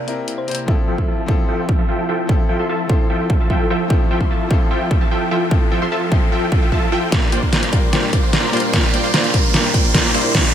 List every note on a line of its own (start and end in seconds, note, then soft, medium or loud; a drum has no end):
0.00 0.07 C3 medium
0.00 0.65 C3 medium
0.00 0.65 A#3 medium
0.00 0.07 C4 medium
0.00 0.08 E4 medium
0.00 0.65 E4 medium
0.00 0.09 A#4 loud
0.07 0.23 C3 medium
0.07 0.23 C4 medium
0.07 0.23 E4 medium
0.07 0.24 A#4 medium
0.07 closed hi-hat medium
0.28 closed hi-hat medium
0.38 0.55 C5 loud
0.47 0.65 C3 medium
0.47 0.66 C4 medium
0.47 0.66 E4 medium
0.47 0.66 C5 medium
0.47 closed hi-hat soft
0.51 closed hi-hat medium
0.55 closed hi-hat medium
0.66 7.10 F1 medium
0.66 1.25 F3 medium
0.66 0.81 F3 medium
0.66 7.08 F3 medium
0.66 1.26 C4 medium
0.66 7.08 E4 medium
0.66 1.27 E4 medium
0.66 0.81 F4 medium
0.66 0.81 A4 medium
0.66 7.08 A4 medium
0.66 0.81 E5 medium
0.66 0.81 G5 medium
0.66 kick loud
0.66 riser medium
0.70 1.27 A4 medium
0.88 0.96 F3 loud
0.88 0.96 F4 medium
0.88 0.96 A4 medium
0.88 0.96 E5 medium
0.88 0.96 G5 loud
0.98 1.06 F3 medium
0.98 1.06 F4 medium
0.98 1.06 A4 medium
0.98 1.06 E5 medium
0.98 1.06 C6 medium
0.98 kick medium
1.08 1.25 F3 medium
1.08 1.25 F4 medium
1.08 1.25 A4 medium
1.08 1.25 E5 medium
1.08 1.25 A5 loud
1.26 2.25 F3 medium
1.26 1.46 F3 medium
1.26 2.26 C4 medium
1.26 2.27 E4 medium
1.26 1.46 F4 medium
1.26 1.46 A4 medium
1.26 1.46 E5 medium
1.26 1.46 C6 loud
1.26 kick loud
1.30 2.28 A4 loud
1.48 1.66 F3 loud
1.48 1.66 F4 medium
1.48 1.66 A4 medium
1.48 1.66 E5 medium
1.48 1.66 G5 loud
1.69 1.77 F3 medium
1.69 1.77 F4 medium
1.69 1.77 A4 medium
1.69 1.77 E5 medium
1.69 1.77 G5 medium
1.69 kick loud
1.79 1.86 F3 medium
1.79 1.86 F4 medium
1.79 1.86 A4 medium
1.79 1.86 E5 medium
1.79 1.86 A5 loud
1.89 2.07 F3 loud
1.89 2.06 F4 medium
1.89 2.06 A4 medium
1.89 2.07 E5 medium
1.89 2.06 G5 loud
2.09 2.26 F3 medium
2.09 2.26 F4 medium
2.09 2.26 A4 medium
2.09 2.26 E5 medium
2.09 2.26 G5 loud
2.27 2.86 F3 medium
2.27 2.42 F3 medium
2.27 2.87 C4 medium
2.27 2.87 E4 medium
2.27 2.42 F4 medium
2.27 2.42 A4 medium
2.27 2.42 G5 medium
2.27 kick loud
2.31 2.88 A4 medium
2.49 2.57 F3 loud
2.49 2.57 F4 medium
2.49 2.57 A4 medium
2.49 2.57 E5 medium
2.49 2.57 G5 loud
2.59 2.67 F3 medium
2.59 2.67 F4 medium
2.59 2.67 A4 medium
2.59 2.67 E5 medium
2.59 2.67 C6 medium
2.69 2.87 F3 medium
2.69 2.87 F4 medium
2.69 2.87 A4 medium
2.69 2.87 E5 medium
2.69 2.87 A5 loud
2.87 3.87 F3 medium
2.87 3.07 F3 medium
2.87 3.87 C4 medium
2.87 3.88 E4 medium
2.87 3.07 F4 medium
2.87 3.07 A4 medium
2.87 3.07 E5 medium
2.87 3.07 C6 loud
2.87 kick loud
2.91 3.89 A4 medium
3.10 3.28 F3 medium
3.10 3.28 F4 medium
3.10 3.28 A4 medium
3.10 3.28 E5 medium
3.10 3.28 G5 loud
3.30 3.39 F3 medium
3.30 3.39 F4 medium
3.30 3.39 A4 medium
3.30 3.39 E5 medium
3.30 3.39 G5 medium
3.30 kick loud
3.40 3.48 F3 medium
3.40 3.48 F4 medium
3.40 3.48 A4 medium
3.40 3.48 E5 medium
3.40 3.48 A5 loud
3.50 3.68 F3 loud
3.50 3.68 F4 medium
3.50 3.68 A4 medium
3.50 3.68 E5 medium
3.50 3.68 G5 loud
3.50 kick medium
3.70 3.87 F3 loud
3.70 3.87 F4 medium
3.70 3.87 A4 medium
3.70 3.87 E5 medium
3.70 3.87 G5 loud
3.88 4.47 F3 medium
3.88 4.04 F3 medium
3.88 4.48 C4 medium
3.88 4.49 E4 medium
3.88 4.04 F4 medium
3.88 4.04 A4 medium
3.88 4.49 A4 medium
3.88 4.04 E5 medium
3.88 4.04 G5 medium
3.88 kick loud
4.11 4.18 F3 loud
4.11 4.18 F4 medium
4.11 4.18 A4 medium
4.11 4.18 E5 medium
4.11 4.18 G5 loud
4.21 4.28 F3 medium
4.21 4.28 F4 medium
4.21 4.28 A4 medium
4.21 4.28 C6 medium
4.21 kick medium
4.31 4.48 F3 medium
4.31 4.48 F4 medium
4.31 4.48 A4 medium
4.31 4.48 E5 medium
4.31 4.48 A5 loud
4.49 5.48 F3 medium
4.49 4.68 F3 loud
4.49 5.49 C4 medium
4.49 5.49 E4 medium
4.49 4.68 F4 medium
4.49 4.68 A4 medium
4.49 4.68 E5 medium
4.49 4.68 C6 loud
4.49 kick loud
4.53 5.50 A4 loud
4.71 4.89 F3 medium
4.71 4.89 F4 medium
4.71 4.89 A4 medium
4.71 4.89 E5 medium
4.71 4.89 G5 loud
4.91 5.00 F3 medium
4.91 5.00 F4 medium
4.91 5.00 A4 medium
4.91 5.00 E5 medium
4.91 5.00 G5 medium
4.91 kick loud
5.01 5.09 F3 loud
5.01 5.09 F4 medium
5.01 5.09 A4 medium
5.01 5.09 E5 medium
5.01 5.09 A5 loud
5.11 5.29 F3 loud
5.11 5.29 F4 medium
5.11 5.29 A4 loud
5.11 5.29 E5 medium
5.11 5.29 G5 loud
5.31 5.48 F3 medium
5.31 5.48 F4 medium
5.31 5.48 A4 medium
5.31 5.48 E5 medium
5.31 5.48 G5 loud
5.49 6.08 F3 medium
5.49 5.65 F3 medium
5.49 6.09 C4 medium
5.49 6.10 E4 medium
5.49 5.65 F4 medium
5.49 5.65 A4 medium
5.49 6.10 A4 medium
5.49 5.65 E5 medium
5.49 5.65 G5 medium
5.49 kick loud
5.72 5.79 F3 loud
5.72 5.79 F4 medium
5.72 5.79 A4 medium
5.72 5.79 E5 loud
5.72 5.79 G5 loud
5.82 5.89 F3 medium
5.82 5.89 F4 medium
5.82 5.89 A4 medium
5.82 5.89 E5 medium
5.82 5.89 C6 medium
5.92 6.09 F3 medium
5.92 6.09 F4 medium
5.92 6.09 A4 medium
5.92 6.09 E5 medium
5.92 6.09 A5 medium
6.10 7.09 F3 medium
6.10 6.30 F3 medium
6.10 7.10 C4 medium
6.10 7.10 E4 medium
6.10 6.30 F4 medium
6.10 6.30 A4 medium
6.10 6.30 E5 medium
6.10 6.30 C6 loud
6.10 kick loud
6.14 7.11 A4 medium
6.32 6.50 F3 medium
6.32 6.50 F4 medium
6.32 6.50 A4 medium
6.32 6.50 E5 medium
6.32 6.50 G5 loud
6.52 6.61 F3 medium
6.52 6.61 F4 medium
6.52 6.61 A4 medium
6.52 6.61 E5 medium
6.52 6.61 G5 medium
6.52 kick loud
6.62 6.70 F3 medium
6.62 6.70 F4 medium
6.62 6.70 A4 medium
6.62 6.70 E5 medium
6.62 6.70 G5 medium
6.72 6.89 F3 medium
6.72 6.89 F4 medium
6.72 6.89 A4 medium
6.72 6.89 E5 medium
6.72 6.89 A5 medium
6.72 kick medium
6.92 7.09 F3 medium
6.92 7.09 F4 medium
6.92 7.09 A4 medium
6.92 7.09 E5 medium
6.92 7.09 G5 loud
7.10 10.12 A#1 medium
7.10 7.69 A#2 medium
7.10 7.70 G3 medium
7.10 10.11 G3 medium
7.10 7.25 A#3 medium
7.10 10.54 A#3 medium
7.10 10.11 D4 medium
7.10 7.71 D4 medium
7.10 7.25 F4 medium
7.10 7.25 D5 medium
7.10 kick loud
7.10 snare soft
7.10 closed hi-hat medium
7.14 7.71 A#4 medium
7.32 7.40 A#3 loud
7.32 7.40 F4 medium
7.32 7.40 C5 medium
7.32 7.40 D5 medium
7.32 7.40 G5 loud
7.32 closed hi-hat medium
7.43 7.50 A#3 medium
7.43 7.50 F4 medium
7.43 7.50 C5 medium
7.43 7.50 D5 medium
7.43 7.50 C6 medium
7.43 kick medium
7.53 7.70 A#3 medium
7.53 7.70 F4 medium
7.53 7.70 C5 medium
7.53 7.70 D5 medium
7.53 7.70 A#5 medium
7.53 snare medium
7.53 closed hi-hat medium
7.63 closed hi-hat medium
7.70 7.89 A#2 medium
7.70 7.91 G3 medium
7.70 7.91 A#3 medium
7.70 7.91 D4 medium
7.70 7.91 F4 medium
7.70 7.91 C5 medium
7.70 7.91 D5 medium
7.70 7.91 C6 loud
7.70 kick loud
7.70 closed hi-hat medium
7.74 7.92 A#4 medium
7.91 8.50 A#2 medium
7.91 8.51 G3 medium
7.91 8.06 A#3 medium
7.91 8.51 D4 medium
7.91 8.06 F4 medium
7.91 8.52 A#4 medium
7.91 8.06 C5 medium
7.91 8.06 D5 medium
7.91 8.06 G5 medium
7.91 snare medium
7.91 closed hi-hat medium
8.13 8.21 A#3 medium
8.13 8.21 F4 medium
8.13 8.21 C5 medium
8.13 8.21 D5 medium
8.13 8.21 G5 medium
8.13 kick loud
8.13 closed hi-hat medium
8.23 8.31 A#3 medium
8.23 8.31 F4 medium
8.23 8.31 C5 medium
8.23 8.31 D5 medium
8.23 8.31 C6 medium
8.33 8.50 A#3 medium
8.33 8.50 F4 medium
8.33 8.50 C5 medium
8.33 8.50 D5 medium
8.33 8.50 A#5 medium
8.33 snare medium
8.33 closed hi-hat medium
8.51 8.70 A#2 medium
8.51 8.71 G3 medium
8.51 8.71 A#3 medium
8.51 8.72 D4 medium
8.51 8.71 F4 medium
8.51 8.73 A#4 loud
8.51 8.71 C5 medium
8.51 8.71 D5 medium
8.51 8.71 C6 loud
8.51 closed hi-hat soft
8.57 closed hi-hat medium
8.60 closed hi-hat medium
8.71 9.30 A#2 medium
8.71 9.31 G3 medium
8.71 8.86 A#3 medium
8.71 9.32 D4 medium
8.71 8.86 F4 medium
8.71 8.86 C5 medium
8.71 8.86 D5 medium
8.71 8.86 G5 medium
8.71 kick loud
8.71 snare medium
8.71 closed hi-hat medium
8.93 9.01 A#3 medium
8.93 9.01 F4 medium
8.93 9.01 C5 medium
8.93 9.01 D5 medium
8.93 9.01 G5 loud
8.93 closed hi-hat medium
9.04 9.11 A#3 medium
9.04 9.11 F4 medium
9.04 9.11 C5 medium
9.04 9.11 D5 medium
9.04 9.11 C6 medium
9.14 9.31 A#3 medium
9.14 9.31 F4 medium
9.14 9.31 C5 medium
9.14 9.31 D5 medium
9.14 9.31 A#5 medium
9.14 snare medium
9.14 closed hi-hat medium
9.24 closed hi-hat medium
9.32 9.51 A#2 medium
9.32 9.52 G3 medium
9.32 9.52 A#3 medium
9.32 9.53 D4 medium
9.32 9.52 F4 medium
9.32 9.52 C5 medium
9.32 9.52 D5 medium
9.32 9.52 C6 loud
9.32 kick loud
9.32 closed hi-hat medium
9.36 9.53 A#4 medium
9.52 10.11 A#2 medium
9.52 10.12 G3 medium
9.52 9.67 A#3 medium
9.52 10.12 D4 medium
9.52 9.67 F4 medium
9.52 10.13 A#4 medium
9.52 9.67 C5 medium
9.52 9.67 D5 medium
9.52 9.67 G5 medium
9.52 snare medium
9.52 closed hi-hat medium
9.74 9.82 A#3 medium
9.74 9.82 F4 medium
9.74 9.82 C5 medium
9.74 9.82 D5 medium
9.74 9.82 G5 loud
9.74 kick loud
9.74 closed hi-hat medium
9.84 9.92 A#3 medium
9.84 9.92 F4 medium
9.84 9.92 C5 medium
9.84 9.92 D5 medium
9.84 9.92 C6 medium
9.94 10.11 A#3 medium
9.94 10.11 F4 medium
9.94 10.11 C5 medium
9.94 10.11 D5 medium
9.94 10.11 A#5 loud
9.94 kick medium
9.94 snare medium
9.94 closed hi-hat medium
10.12 10.54 C2 medium
10.12 10.31 A#2 medium
10.12 10.54 C3 medium
10.12 10.33 G3 medium
10.12 10.32 A#3 medium
10.12 10.33 D4 medium
10.12 10.32 E4 medium
10.12 10.54 E4 medium
10.12 10.34 A#4 loud
10.12 10.32 C5 medium
10.12 10.32 D5 medium
10.12 10.32 C6 loud
10.12 closed hi-hat soft
10.18 closed hi-hat medium
10.21 closed hi-hat medium
10.33 10.54 A#2 medium
10.33 10.54 D4 medium
10.33 kick loud
10.33 snare medium
10.33 closed hi-hat medium
10.37 10.54 A#4 medium